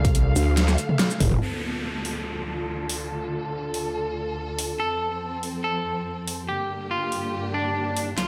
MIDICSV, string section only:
0, 0, Header, 1, 2, 480
1, 0, Start_track
1, 0, Key_signature, -1, "minor"
1, 0, Tempo, 422535
1, 1609, Time_signature, 4, 2, 24, 8
1, 9405, End_track
2, 0, Start_track
2, 0, Title_t, "String section"
2, 0, Program_c, 0, 48
2, 0, Note_on_c, 0, 50, 77
2, 0, Note_on_c, 0, 57, 70
2, 0, Note_on_c, 0, 69, 72
2, 0, Note_on_c, 0, 77, 91
2, 1563, Note_off_c, 0, 50, 0
2, 1563, Note_off_c, 0, 57, 0
2, 1564, Note_off_c, 0, 69, 0
2, 1596, Note_off_c, 0, 77, 0
2, 1610, Note_on_c, 0, 38, 71
2, 1610, Note_on_c, 0, 50, 65
2, 1610, Note_on_c, 0, 65, 64
2, 1610, Note_on_c, 0, 69, 76
2, 5411, Note_off_c, 0, 38, 0
2, 5411, Note_off_c, 0, 50, 0
2, 5411, Note_off_c, 0, 65, 0
2, 5449, Note_on_c, 0, 41, 72
2, 5449, Note_on_c, 0, 60, 69
2, 5450, Note_on_c, 0, 53, 70
2, 7324, Note_off_c, 0, 69, 0
2, 7350, Note_off_c, 0, 41, 0
2, 7350, Note_off_c, 0, 53, 0
2, 7350, Note_off_c, 0, 60, 0
2, 7368, Note_on_c, 0, 50, 69
2, 7368, Note_on_c, 0, 58, 68
2, 7369, Note_on_c, 0, 43, 77
2, 7369, Note_on_c, 0, 67, 81
2, 9269, Note_off_c, 0, 50, 0
2, 9270, Note_off_c, 0, 43, 0
2, 9270, Note_off_c, 0, 58, 0
2, 9270, Note_off_c, 0, 67, 0
2, 9289, Note_on_c, 0, 38, 76
2, 9289, Note_on_c, 0, 50, 66
2, 9289, Note_on_c, 0, 57, 68
2, 9289, Note_on_c, 0, 65, 79
2, 9405, Note_off_c, 0, 38, 0
2, 9405, Note_off_c, 0, 50, 0
2, 9405, Note_off_c, 0, 57, 0
2, 9405, Note_off_c, 0, 65, 0
2, 9405, End_track
0, 0, End_of_file